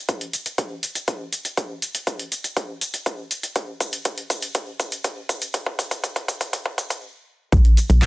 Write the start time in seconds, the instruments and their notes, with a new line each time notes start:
0.09 kick, closed hi-hat, shaker
0.21 closed hi-hat
0.33 open hi-hat, shaker
0.46 closed hi-hat, shaker
0.58 kick, closed hi-hat, shaker
0.83 open hi-hat, shaker
0.95 closed hi-hat, shaker
1.08 kick, closed hi-hat, shaker
1.33 open hi-hat, shaker
1.45 closed hi-hat, shaker
1.57 kick, closed hi-hat, shaker
1.82 open hi-hat, shaker
1.95 closed hi-hat, shaker
2.07 kick, closed hi-hat, shaker
2.19 closed hi-hat
2.32 open hi-hat, shaker
2.44 closed hi-hat, shaker
2.57 kick, closed hi-hat, shaker
2.81 open hi-hat, shaker
2.94 closed hi-hat, shaker
3.06 kick, closed hi-hat, shaker
3.31 open hi-hat, shaker
3.43 closed hi-hat, shaker
3.56 kick, closed hi-hat, shaker
3.80 kick, open hi-hat, shaker
3.93 closed hi-hat, shaker
4.05 kick, closed hi-hat, shaker
4.18 closed hi-hat
4.30 kick, open hi-hat, shaker
4.42 closed hi-hat, shaker
4.55 kick, closed hi-hat, shaker
4.80 kick, open hi-hat, shaker
4.92 closed hi-hat, shaker
5.04 kick, closed hi-hat, shaker
5.29 kick, open hi-hat, shaker
5.42 closed hi-hat, shaker
5.54 kick, closed hi-hat, shaker
5.66 kick
5.79 kick, open hi-hat, shaker
5.91 kick, closed hi-hat, shaker
6.04 kick, closed hi-hat, shaker
6.16 kick, closed hi-hat
6.28 kick, open hi-hat, shaker
6.41 kick, closed hi-hat, shaker
6.53 kick, closed hi-hat, shaker
6.66 kick
6.78 kick, open hi-hat, shaker
6.90 kick, closed hi-hat, shaker
7.52 analog synth bass B1, kick, closed hi-hat, shaker
7.65 closed hi-hat
7.77 open hi-hat, shaker
7.90 analog synth bass B1, closed hi-hat, shaker
8.02 kick, clap, closed hi-hat, shaker